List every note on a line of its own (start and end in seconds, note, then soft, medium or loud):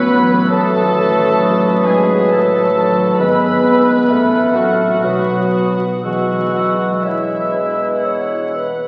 0.00 0.47 A1 medium
0.00 0.46 A2 medium
0.00 0.51 A2 medium
0.00 0.21 E3 medium
0.00 1.10 F#3 medium
0.00 3.16 F#3 medium
0.00 1.49 A3 medium
0.00 0.51 B3 medium
0.00 0.54 C#4 medium
0.00 0.55 E4 medium
0.00 2.00 F#4 medium
0.00 0.49 B4 medium
0.00 0.50 B4 loud
0.00 0.51 B4 medium
0.00 0.47 C#5 medium
0.00 0.51 B5 medium
0.00 0.50 E6 medium
0.23 0.55 E3 medium
0.50 3.03 A1 medium
0.50 3.16 A1 medium
0.50 3.16 A2 medium
0.50 3.24 A2 medium
0.50 1.83 A3 medium
0.50 1.88 A4 medium
0.50 1.83 A4 medium
0.50 1.83 A4 loud
0.50 3.16 B4 medium
0.50 1.85 A5 loud
0.50 2.90 D#6 medium
0.82 2.89 D#3 soft
1.11 2.60 F#3 medium
1.41 2.30 D#4 medium
1.71 3.78 B4 medium
1.86 2.31 G#3 medium
1.86 2.30 G#4 medium
1.86 2.31 G#4 medium
1.86 2.30 G#5 medium
2.01 3.23 F#4 medium
2.30 3.20 A3 medium
2.30 3.23 D#4 medium
2.30 3.19 A4 medium
2.30 3.20 A4 medium
2.30 3.22 A4 medium
2.30 3.20 A5 medium
2.61 3.23 F#3 soft
2.90 3.23 D#3 soft
3.18 4.08 G#1 medium
3.18 4.13 G#2 medium
3.18 4.08 G#2 medium
3.18 4.10 G#3 medium
3.18 4.56 B3 medium
3.18 4.56 B4 medium
3.18 4.12 B4 medium
3.18 4.58 B4 medium
3.18 4.56 B4 medium
3.18 4.52 B5 loud
3.18 4.05 E6 medium
3.49 4.13 B3 soft
3.79 4.13 E4 soft
4.09 5.02 A1 medium
4.09 5.07 A2 medium
4.09 5.02 A2 medium
4.09 5.05 A3 soft
4.09 5.06 A4 medium
4.09 5.01 F6 medium
4.41 5.08 C4 soft
4.55 5.87 F#3 medium
4.55 6.02 F#4 medium
4.55 5.73 F#4 medium
4.55 6.04 F#4 medium
4.55 6.04 F#5 medium
4.72 5.07 F4 soft
4.72 5.08 A4 soft
5.03 6.06 B1 medium
5.03 6.02 B1 medium
5.03 6.08 B2 soft
5.03 6.02 B2 medium
5.03 5.88 F#3 medium
5.03 5.88 B4 medium
5.03 6.04 D#6 soft
5.36 6.37 B3 soft
5.70 6.08 D#4 soft
5.70 6.08 F#4 soft
6.03 8.84 E1 soft
6.03 8.84 E2 soft
6.03 8.88 E3 soft
6.03 7.03 F#3 medium
6.03 7.03 G#3 soft
6.03 7.02 F#4 medium
6.03 7.05 F#4 medium
6.03 7.03 F#4 medium
6.03 7.03 B4 soft
6.03 7.03 F#5 medium
6.03 7.03 E6 soft
6.39 8.71 B3 soft
6.71 8.37 E4 soft
7.04 8.67 G#3 soft
7.04 8.54 E4 soft
7.04 8.52 E4 soft
7.04 8.04 G#4 soft
7.04 7.55 C#5 soft
7.04 8.04 E5 medium
7.04 8.67 E6 soft
7.08 8.54 E3 soft
7.39 8.88 B4 soft
7.54 8.06 B4 soft
7.72 8.88 E5 soft
8.03 8.88 G#4 soft
8.03 8.57 C#5 medium
8.03 8.88 F#5 medium
8.39 8.88 E4 soft
8.56 8.88 B4 soft
8.72 8.88 B3 soft